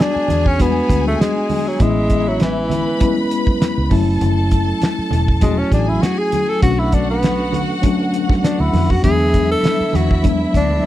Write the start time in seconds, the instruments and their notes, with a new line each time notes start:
Already playing: tine electric piano G#3 B3 D4 F#4, string section G#4 G#5
0.01 tenor saxophone D4, snare
0.16 muted fingered electric bass stroke
0.28 fingered electric bass E2, closed hi-hat, low conga
0.46 tenor saxophone C#4, kick
0.58 tine electric piano G3 B3 D4 F#4, tenor saxophone B3, kick, closed hi-hat, muted conga, high conga
0.65 tine electric piano G#3
0.89 fingered electric bass D2, kick, closed hi-hat
1.06 tenor saxophone A3, high conga
1.20 tenor saxophone G#3, snare, closed hi-hat, high conga
1.36 muted conga
1.50 open hi-hat, high conga, low conga
1.68 tenor saxophone F#3
1.79 fingered electric bass A1, tine electric piano G#3 B3 C#4 E4, tenor saxophone G#3, string section E4 E5, kick, closed hi-hat, muted conga, low conga
1.96 muted conga
2.10 kick, closed hi-hat, high conga
2.28 tenor saxophone F#3
2.39 tenor saxophone E3, snare, closed hi-hat, muted conga, high conga
2.56 muted conga
2.70 string section B4 B5, closed hi-hat, low conga
2.99 tine electric piano G#3 B3 C#4 E4, kick, closed hi-hat, muted conga, high conga
3.17 muted conga
3.31 closed hi-hat
3.47 kick, high conga
3.61 snare, closed hi-hat, muted conga, high conga
3.78 fingered electric bass C#2, muted conga
3.90 fingered electric bass F#1, tine electric piano F#3 A3 C#4 E4, string section A4 A5, kick, open hi-hat, high conga, low conga
4.21 fingered electric bass F#1, closed hi-hat, muted conga, low conga
4.51 kick, closed hi-hat, high conga
4.82 snare, closed hi-hat, muted conga, high conga
4.99 muted fingered electric bass stroke
5.11 fingered electric bass E1, closed hi-hat, low conga
5.28 kick
5.41 tine electric piano F#3 A3 C#4 F#4, tenor saxophone G#3, kick, closed hi-hat, high conga
5.59 tenor saxophone C#4, muted conga
5.72 fingered electric bass A1, tenor saxophone D4, string section G#4 G#5, kick, closed hi-hat
5.89 tenor saxophone E4, high conga
6.02 tenor saxophone F#4, snare, closed hi-hat, high conga
6.18 tenor saxophone G#4
6.32 closed hi-hat, high conga, low conga
6.49 tenor saxophone A4
6.61 fingered electric bass B1, tonewheel organ D3 A3 B3, tine electric piano F#3 A3 C#4 D4, string section F#4 F#5, tenor saxophone F#4, kick, closed hi-hat, low conga
6.79 tenor saxophone E4, muted conga
6.92 tenor saxophone D4, kick, closed hi-hat, high conga
7.10 tenor saxophone B3
7.23 snare, closed hi-hat, muted conga, high conga
7.39 muted conga
7.53 closed hi-hat, low conga
7.82 tine electric piano F#3 A3 C#4 D4, kick, closed hi-hat, muted conga, high conga
8.00 muted conga
8.14 closed hi-hat
8.30 kick, snare, high conga
8.43 tenor saxophone D4, snare, closed hi-hat, muted conga, high conga
8.60 fingered electric bass D2, tenor saxophone E4
8.73 fingered electric bass F2, snare, open hi-hat, high conga, low conga
8.90 tenor saxophone F#4, kick
9.03 fingered electric bass E2, tonewheel organ D3 B3 E4, tine electric piano F#3 G3 B3 D4, string section E4 E5, tenor saxophone G#4, kick, closed hi-hat, muted conga, low conga
9.10 tine electric piano G#3
9.20 muted conga
9.34 kick, closed hi-hat, high conga
9.51 tenor saxophone A4
9.63 snare, closed hi-hat, muted conga, high conga
9.81 muted fingered electric bass stroke
9.93 fingered electric bass E2, tenor saxophone F#4, closed hi-hat, low conga
10.11 kick
10.23 tine electric piano F#3 G#3 B3 D4, kick, closed hi-hat, muted conga, high conga
10.54 fingered electric bass D2, tenor saxophone D4, kick, closed hi-hat
10.71 high conga